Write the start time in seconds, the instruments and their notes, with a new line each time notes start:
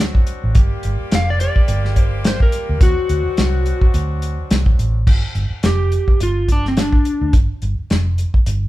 Already playing: fingered electric bass D2, horn section F#3 C4 D4 F#4
0.15 kick
0.27 closed hi-hat
0.44 fingered electric bass A1
0.55 fingered electric bass G1, horn section G3 A#3 F4 G4, kick, closed hi-hat
0.83 fingered electric bass G1, closed hi-hat
1.12 fingered electric bass F1, electric slide guitar F5, snare, closed hi-hat
1.30 electric slide guitar D5
1.40 electric slide guitar D5, closed hi-hat
1.56 muted fingered electric bass stroke, kick
1.68 fingered electric bass G1, closed hi-hat
1.85 snare
1.96 kick, closed hi-hat
2.01 electric slide guitar C5
2.25 electric slide guitar C5, snare, closed hi-hat
2.40 electric slide guitar A#4, kick
2.52 closed hi-hat
2.69 fingered electric bass D2
2.80 fingered electric bass D2, horn section F#3 C4 D4 F#4, electric slide guitar F#4, kick, closed hi-hat
3.09 fingered electric bass D2, closed hi-hat
3.26 muted fingered electric bass stroke
3.37 fingered electric bass C2, snare, closed hi-hat
3.66 closed hi-hat
3.81 muted fingered electric bass stroke, kick
3.94 fingered electric bass D2, closed hi-hat
4.22 closed hi-hat
4.51 fingered electric bass C2, snare, closed hi-hat
4.66 kick
4.79 fingered electric bass A1, closed hi-hat
5.07 fingered electric bass G1, kick, crash
5.35 fingered electric bass G1, closed hi-hat
5.50 muted fingered electric bass stroke
5.63 fingered electric bass F1, electric slide guitar G4, snare, closed hi-hat
5.92 closed hi-hat
6.08 muted fingered electric bass stroke, kick
6.20 fingered electric bass G1, electric slide guitar F4, closed hi-hat
6.48 electric slide guitar D4, kick, closed hi-hat
6.65 electric slide guitar C4, snare
6.77 snare, closed hi-hat
6.81 electric slide guitar D4
6.92 kick
7.05 closed hi-hat
7.21 fingered electric bass D2
7.33 fingered electric bass G1, kick, closed hi-hat
7.62 fingered electric bass G1, closed hi-hat
7.79 muted fingered electric bass stroke
7.90 fingered electric bass F1, snare, closed hi-hat
8.18 closed hi-hat
8.34 muted fingered electric bass stroke, kick
8.46 fingered electric bass G1, closed hi-hat